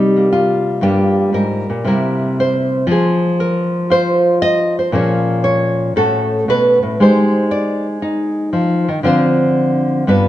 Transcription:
0.00 0.82 C3 medium
0.00 0.82 G3 medium
0.00 0.15 A#3 medium
0.00 0.32 D#4 medium
0.16 0.82 A#3 soft
0.32 0.82 F4 medium
0.81 1.32 G2 medium
0.81 1.85 G3 soft
0.81 1.85 A#3 soft
0.81 1.84 F4 medium
0.81 1.34 G4 medium
1.33 1.68 G#2 medium
1.33 1.69 A#4 medium
1.70 1.85 A#2 medium
1.84 2.88 C3 medium
1.84 2.86 G3 soft
1.84 2.87 A#3 soft
1.84 2.87 E4 soft
1.84 2.38 A#4 soft
2.40 2.90 C5 medium
2.87 4.92 F3 medium
2.87 3.89 F4 soft
2.91 3.40 G#4 medium
3.40 3.91 A#4 medium
3.90 4.91 F4 medium
3.90 4.42 C5 medium
4.42 4.77 D#5 loud
4.79 4.92 C5 medium
4.92 5.94 A#2 medium
4.92 5.96 F3 medium
4.92 5.95 C#4 soft
4.92 5.95 G#4 medium
4.92 5.43 C#5 medium
5.44 5.96 C#5 medium
5.96 6.47 A2 medium
5.96 6.97 A3 soft
5.96 6.98 C#4 soft
5.96 6.98 F#4 soft
5.96 6.48 A4 medium
6.48 6.82 B2 medium
6.48 7.00 B4 medium
6.83 6.99 A2 medium
7.00 8.52 G#3 medium
7.00 8.01 D#4 medium
7.00 9.04 G4 medium
7.00 7.51 C5 medium
7.51 7.86 D5 medium
8.02 9.03 D#4 medium
8.53 8.88 F3 medium
8.88 9.03 D#3 medium
9.03 10.05 D3 medium
9.03 10.07 F3 medium
9.03 10.05 C4 medium
9.03 10.06 F4 medium
9.03 10.06 C5 medium
10.07 10.28 G2 medium
10.07 10.28 B3 soft
10.07 10.28 D4 soft
10.07 10.28 F4 soft
10.07 10.28 B4 medium

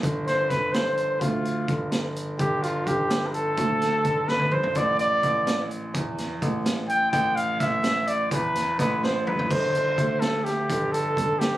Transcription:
0.03 0.46 G1 medium
0.03 kick medium
0.03 closed hi-hat medium
0.26 0.51 C5 medium
0.26 snare soft
0.26 closed hi-hat soft
0.49 1.17 G1 medium
0.49 0.74 B4 medium
0.49 kick medium
0.49 snare soft
0.49 closed hi-hat medium
0.72 1.23 C5 medium
0.72 snare loud
0.72 closed hi-hat medium
0.97 closed hi-hat medium
1.21 1.65 D2 medium
1.21 1.92 F4 medium
1.21 kick medium
1.21 closed hi-hat medium
1.45 closed hi-hat soft
1.68 2.35 G1 medium
1.68 kick medium
1.68 closed hi-hat soft
1.92 snare medium
1.92 closed hi-hat medium
2.16 closed hi-hat medium
2.39 2.83 G1 loud
2.39 2.64 G4 medium
2.39 kick medium
2.39 closed hi-hat medium
2.63 2.89 F4 medium
2.63 closed hi-hat medium
2.87 3.54 G1 medium
2.87 3.28 G4 medium
2.87 kick medium
2.87 closed hi-hat medium
3.10 snare loud
3.10 closed hi-hat medium
3.27 3.34 B4 medium
3.32 4.30 A4 medium
3.32 closed hi-hat medium
3.57 4.01 D2 medium
3.57 kick medium
3.57 closed hi-hat medium
3.81 snare soft
3.81 closed hi-hat medium
4.05 4.76 G1 medium
4.05 kick medium
4.05 closed hi-hat medium
4.28 4.54 B4 loud
4.28 snare medium
4.39 high tom medium
4.51 4.78 C5 medium
4.51 mid tom medium
4.63 floor tom medium
4.75 5.19 A1 medium
4.75 4.99 D5 loud
4.75 kick loud
4.75 closed hi-hat medium
4.99 5.66 D5 loud
4.99 closed hi-hat medium
5.23 5.90 A1 medium
5.23 kick medium
5.23 closed hi-hat medium
5.47 snare loud
5.47 closed hi-hat medium
5.71 closed hi-hat medium
5.94 6.38 E2 medium
5.94 kick loud
5.94 closed hi-hat medium
6.18 snare soft
6.18 closed hi-hat medium
6.42 7.09 A1 medium
6.42 kick medium
6.42 closed hi-hat medium
6.66 snare medium
6.66 closed hi-hat medium
6.88 7.11 G5 loud
6.88 closed hi-hat medium
7.12 7.56 A1 loud
7.12 7.37 G5 loud
7.12 kick loud
7.12 closed hi-hat medium
7.36 7.61 F5 medium
7.36 closed hi-hat medium
7.60 8.28 A1 medium
7.60 8.09 E5 loud
7.60 kick medium
7.60 snare soft
7.60 closed hi-hat medium
7.84 snare loud
7.84 closed hi-hat medium
8.07 8.31 D5 medium
8.07 closed hi-hat medium
8.31 8.75 E2 medium
8.31 8.76 B4 medium
8.31 kick loud
8.31 closed hi-hat medium
8.55 snare soft
8.55 closed hi-hat medium
8.79 9.46 A1 medium
8.79 9.06 B4 medium
8.79 kick medium
8.79 snare soft
8.79 closed hi-hat medium
9.03 9.26 C5 medium
9.03 snare medium
9.27 9.53 B4 medium
9.27 mid tom medium
9.39 floor tom medium
9.50 9.72 G1 loud
9.50 10.21 C5 loud
9.50 kick loud
9.50 crash medium
9.74 9.96 G1 medium
9.74 closed hi-hat medium
9.98 10.65 D2 medium
9.98 kick medium
9.98 closed hi-hat medium
10.20 10.46 A4 medium
10.20 snare medium
10.20 closed hi-hat medium
10.44 10.93 G4 medium
10.44 snare soft
10.44 closed hi-hat medium
10.70 11.13 G1 medium
10.70 kick loud
10.70 closed hi-hat medium
10.92 11.40 A4 medium
10.92 closed hi-hat medium
11.17 11.57 G1 medium
11.17 kick medium
11.17 closed hi-hat medium
11.39 11.57 G4 medium
11.39 snare loud
11.39 closed hi-hat medium

